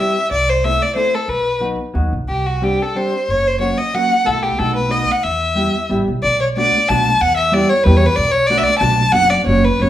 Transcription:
Already playing: G3
0.00 C4 E4 G4 E5
0.31 C2 D5
0.49 C5
0.64 A3 C4 E4 A4 E5
0.82 D5
0.95 A3 C4 E4 A4 C5
1.15 A4
1.28 B1 B4
1.60 F#3 B3 D#4 F#4
1.94 D#2 F#3 B3 D#4 F#4
2.13 B1
2.29 C2 G4
2.46 F#4
2.62 G3 C4 D4 G4
2.82 A4
2.95 G3 C4 D4 G4 C5
3.28 F#1 C#5
3.47 C5
3.59 F#3 A#3 C#4 F#4 C#5
3.78 D#5
3.94 F#3 A#3 C#4 F#4 F#5
4.24 B1 A3 B3 E4 F#4 A4
4.43 G4
4.59 B1 A3 B3 D#4 F#4 A4
4.76 B4
4.88 A3 B3 D#4 F#4 D#5
5.12 F#5
5.23 E2 E5
5.55 G3 B3 E4 G4
5.89 A1 G3 B3 E4 G4
6.08 B1
6.23 B1 D5
6.41 C#5
6.57 A3 B3 D4 F#4 D5
6.89 B1 A3 B3 D4 F#4 A5
7.21 E2 F#5
7.37 E5
7.52 G3 B3 E4 G4 D5
7.69 C#5
7.83 E2 G3 B3 E4 G4 B4
7.97 C#5
8.06 B4
8.16 B1 D5
8.31 C#5
8.47 A3 B3 D4 F#4 D5
8.58 E5
8.63 D5
8.79 B1 A3 B3 D4 F#4 A5
9.12 F#1 F#3 B3 D4 F#4 F#5
9.30 D5
9.46 F#1 F#3 A#3 C#4 F#4 C#5
9.64 B4
9.80 F#1 F#3 A#3 C#4 F#4 C#5

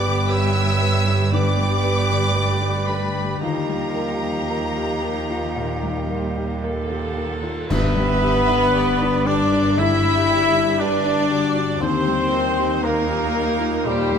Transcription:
Already playing: G1 G2 G3 B3 G4 B4 D5 G5 D6
0.05 D3 G4
0.30 B4 C#5 E5 E6
0.56 G4
0.81 D3 B4
1.07 G4 B4
1.31 D3 B3 G4 B4 D5 G5 D6
1.57 G3 B4
1.83 G4 B4
2.09 D3 G4
2.35 A3 B4 D5
2.61 G4
2.87 D3 B4 B5
3.14 G4 B4
3.41 D#2 D#3 F3 G3 F4 G4 A#4 D#5 F5 A#5
3.68 G3 A#4
3.95 F4 A#4
4.22 D#4 G4
4.49 D#3 A#4
4.76 F4 G4
5.03 D#4 A#4
5.30 F4 A#4
5.56 A#2 D#4
5.83 G3 A#4
6.09 G3 F4 A#4
6.36 D#4 G4
6.63 A4 A#4
6.90 F4 G4
7.17 D#4 A#4
7.43 F4 A#4
7.69 G1 G2 B3 B4 E5 B5, concert bass drum, crash
7.96 G3 G4
8.22 D4 G4
8.48 D3 D4
8.74 G4 D5
9.01 D4
9.26 D3 D4 G4 B4 D5 D6
9.51 D4 G4
9.77 D3 E4 G4 E5 E6
10.03 G3 G4
10.29 D4 G4
10.54 D3 D4
10.78 D4 G4 B4 D5 D6
11.03 D4
11.29 D3 F#4 G4
11.55 D4 G4
11.80 D#2 D#3 C4 G4 C5 C6
12.07 G3 A#4
12.32 D#4 F4 A#4
12.58 D#4 G4
12.83 A#3 A#4 A#5
13.09 F4 G4
13.35 D#4 A#4
13.59 F4
13.85 A#2 G3 G4 C5 G5
14.11 G3 A#4

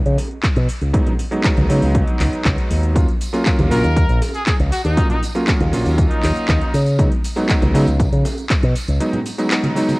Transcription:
0.06 C#3, closed hi-hat, shaker
0.18 open hi-hat, high bongo, shaker
0.32 shaker
0.43 kick, clap, closed hi-hat, shaker
0.56 B2, closed hi-hat, shaker
0.69 open hi-hat, shaker
0.81 C#2, closed hi-hat, shaker
0.93 F#3 G#3 B3 D#4, kick, closed hi-hat, shaker
1.07 closed hi-hat, low conga, shaker
1.19 open hi-hat, shaker
1.31 F#3 G#3 B3 D#4, closed hi-hat, high bongo, shaker
1.44 F#3 G#3 B3 D#4, kick, clap, closed hi-hat, shaker
1.57 C#2, closed hi-hat, high bongo, high conga, shaker
1.69 C#3 F#3 G#3 B3 D#4, open hi-hat, high bongo, shaker
1.82 C#2, open hi-hat, shaker
1.95 kick, closed hi-hat, shaker
2.07 closed hi-hat, shaker
2.20 C#2, clap, open hi-hat, shaker
2.33 muted fingered electric bass stroke, closed hi-hat, shaker
2.45 C#2, kick, clap, closed hi-hat, shaker
2.58 closed hi-hat, shaker
2.71 D#2, open hi-hat, shaker
2.83 closed hi-hat, shaker
2.95 F#3 A#3 C#4 F4, kick, closed hi-hat, tambourine, shaker
3.08 closed hi-hat, shaker
3.21 open hi-hat, tambourine, shaker
3.33 F#3 A#3 C#4 F4, closed hi-hat, tambourine, high bongo, shaker
3.46 F#3 A#3 C#4 F4, kick, clap, closed hi-hat, tambourine, shaker
3.59 D#2, closed hi-hat, high bongo, high conga, shaker
3.71 A#1 F#3 A#3 C#4 F4 A#4, open hi-hat, tambourine, high bongo, shaker
3.83 D#2, closed hi-hat, tambourine, shaker
3.96 kick, closed hi-hat, tambourine, shaker
4.09 A#1, closed hi-hat, shaker
4.22 open hi-hat, tambourine, high bongo, shaker
4.34 G#4, closed hi-hat, tambourine, shaker
4.46 G#4, kick, clap, closed hi-hat, tambourine, shaker
4.59 C#2, closed hi-hat, shaker
4.72 F#4, open hi-hat, tambourine, shaker
4.85 D#2 D#4, closed hi-hat, tambourine, shaker
4.97 F#3 A#3 C#4 F4, kick, closed hi-hat, tambourine, shaker
5.10 D#4, closed hi-hat, low conga, shaker
5.23 open hi-hat, tambourine, shaker
5.35 F#3 A#3 C#4 F4, closed hi-hat, tambourine, high bongo, shaker
5.47 F#3 A#3 C#4 F4, kick, clap, closed hi-hat, tambourine, shaker
5.60 D#2, closed hi-hat, high bongo, high conga, shaker
5.72 A#1 F#3 A#3 C#4 F4, open hi-hat, tambourine, high bongo, shaker
5.85 D#2, open hi-hat, tambourine, shaker
5.98 kick, closed hi-hat, tambourine, shaker
6.11 D#4, closed hi-hat, shaker
6.23 D#2, clap, open hi-hat, tambourine, shaker
6.36 closed hi-hat, tambourine, shaker
6.48 D#2, kick, clap, closed hi-hat, tambourine, shaker
6.61 closed hi-hat, shaker
6.74 C#3, open hi-hat, tambourine, shaker
6.86 closed hi-hat, tambourine, shaker
6.98 F#3 G#3 B3 D#4, kick, closed hi-hat, tambourine, shaker
7.12 closed hi-hat, shaker
7.24 open hi-hat, tambourine, shaker
7.36 F#3 G#3 B3 D#4, closed hi-hat, tambourine, high bongo, shaker
7.49 F#3 G#3 B3 D#4, kick, clap, closed hi-hat, tambourine, shaker
7.62 C#2, closed hi-hat, high bongo, high conga, shaker
7.74 C#3 F#3 G#3 B3 D#4, open hi-hat, tambourine, high bongo, shaker
7.86 C#2, closed hi-hat, tambourine, shaker
8.00 kick, closed hi-hat, tambourine, shaker
8.13 C#3, closed hi-hat, shaker
8.25 open hi-hat, tambourine, high bongo, shaker
8.38 closed hi-hat, tambourine, shaker
8.50 kick, clap, closed hi-hat, tambourine, shaker
8.63 B2, closed hi-hat, shaker
8.76 open hi-hat, tambourine, shaker
8.88 C#2, closed hi-hat, tambourine, shaker
9.00 F#3 G#3 B3 D#4, closed hi-hat, tambourine, shaker
9.13 closed hi-hat, low conga, shaker
9.26 open hi-hat, tambourine, shaker
9.38 F#3 G#3 B3 D#4, closed hi-hat, tambourine, high bongo, shaker
9.51 F#3 G#3 B3 D#4, clap, closed hi-hat, tambourine, shaker
9.64 closed hi-hat, high bongo, high conga, shaker
9.75 F#3 G#3 B3 D#4, open hi-hat, tambourine, high bongo, shaker
9.89 open hi-hat, tambourine, high conga, shaker

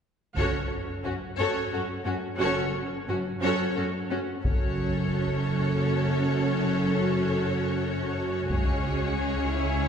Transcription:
0.36 F#1 F#2 C#4 F#4 A4 C#5, taiko
1.04 F#2 C#4 F#4
1.38 F#2 C#4 F#4 A4 C#5
1.72 F#2 C#4 F#4 A4
2.05 F#2 C#4 F#4
2.39 F#1 F#2 C#4 F#4 A4 C#5
3.08 F#2 C#4 F#4
3.42 F#2 C#4 F#4 A4 C#5
3.76 F#2 C#4 F#4 A4
4.10 F#2 C#4 F#4
4.44 F#1 F#2 C#4 F#4 A4 C#5, taiko
8.51 C#2 C#4 G#4 C#5, taiko
9.53 E4

